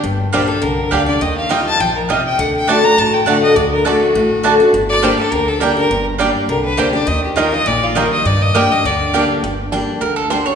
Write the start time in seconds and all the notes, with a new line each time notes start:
0.04 G1 G2
0.33 A#1 G3 A#3 D4 G4 C5 D5 G5
0.47 D4 G4 A4
0.62 C2 D3 A#4
0.91 D2 G3 A#3 D4 G4 D5 F5 G5
1.06 D4 G4 D5
1.21 D#2 D#3 D#5
1.37 F5
1.49 D#3 G3 A#3 D#4 F4 D#5 G5
1.66 A5
1.80 A#1 F3 G5
1.96 A#4
2.09 C3 G3 A#3 D#4 F4 D#5 G5
2.26 G5
2.38 D2 D3 F#5
2.56 G5
2.67 D3 A3 D4 F#4 D5 A5
2.83 D4 F#4 A#5
2.97 A1 A2 A5
3.14 G5
3.26 D3 A3 D4 F#4 D5 F#5 A5
3.43 D#5
3.56 D2 D3 D5
3.71 A#4
3.85 D3 A3 D4 F#4 A4 D5 A5
4.01 F#4
4.15 A1 A2
4.43 D3 A3 D4 F#4 D5 A5
4.60 D4 F#4
4.73 G1 G2
4.89 D5
5.02 G3 A#3 D4 G4 C5 D5 G5
5.18 D4 G4 A4
5.32 D2 D3 A#4
5.48 A4
5.60 G3 A#3 D4 G4 A#4 D5 G5
5.77 D4 G4 A#4
5.90 G1 G2
6.18 G3 A#3 D4 G4 D5 G5
6.48 C2 D3 A#4
6.65 B4
6.77 D2 G3 A#3 D4 G4 C5 D5 G5
6.93 D4 G4 D5
7.07 D#2 D#3 D#5
7.24 G4
7.36 D#3 G3 A#3 D#4 F4 A#4 D#5 G5
7.52 D#4 F4 D#5
7.66 A#1 A#2 D5
7.83 F4
7.95 D#3 G3 A#3 D#4 F4 A#4 D#5 G5
8.12 D#5
8.25 G2 D5
8.42 D#5
8.54 G3 A#3 D4 G4 D5 G5
8.71 D4 G4 D#5
8.85 D2 D3 D5
9.13 G3 A#3 D4 G4 D5 G5
9.43 G1 G2
9.72 G3 A#3 D4 G4
10.01 D2 D3 A#4
10.16 A4
10.30 G3 A#3 D4 G4 C5
10.46 D4 G4 C#5